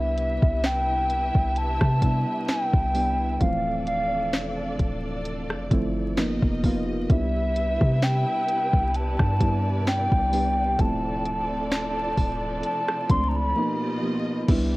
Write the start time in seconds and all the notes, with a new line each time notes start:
Already playing: C2 C3 G3 B3 D4 E4 G4 B4 E5
0.18 closed hi-hat
0.43 C2, kick
0.64 G5, snare, closed hi-hat
1.10 closed hi-hat
1.35 C2, kick
1.56 A5, closed hi-hat
1.81 C3, kick, cross-stick
2.02 G3 B3 D4 E4, kick, closed hi-hat
2.48 G5, snare, closed hi-hat
2.73 C2, kick
2.94 G3 B3 D4 E4, open hi-hat
3.40 D1 E3 F3 A3 C4 D4 A4 D5 F5, kick, closed hi-hat
3.87 F5, closed hi-hat
4.33 E1, snare, closed hi-hat
4.79 D1, kick, closed hi-hat
5.25 closed hi-hat
5.50 F1, cross-stick
5.71 G1 F3 A3 C4 E4, kick, closed hi-hat
6.17 B2 F3 A#3 B3 D#4 G4 A#4 D#5, snare, closed hi-hat
6.42 F1, kick
6.63 F3 A#3 B3 F4, kick, open hi-hat
7.09 C2 C3 G3 B3 D4 E4 G4 B4 E5, kick, closed hi-hat
7.56 closed hi-hat
7.81 C3, kick
8.02 G5, snare, closed hi-hat
8.48 closed hi-hat
8.73 C2, kick
8.94 D5 A5, closed hi-hat
9.19 G2, kick, cross-stick
9.40 G3 B3 D4 E4, kick, closed hi-hat
9.87 G5, snare, closed hi-hat
10.12 C2, kick
10.32 G3 B3 D4 G4, open hi-hat
10.79 D1 F3 A3 C4 D4 E4 A4 D5 A5, kick, closed hi-hat
11.25 closed hi-hat
11.71 A5, snare, closed hi-hat
12.18 D1, kick, open hi-hat
12.64 A5, closed hi-hat
12.89 cross-stick
13.09 C#2 F3 A3 C4 D4 C6, kick, closed hi-hat
13.29 A#5
13.36 B5
13.56 B2 F3 A#3 B3 D#4 F4 G4 D#5
14.02 F3 A#3 B3 D#4
14.48 C2 C3 E3 G3 B3 D4 E4 G4, kick, closed hi-hat, crash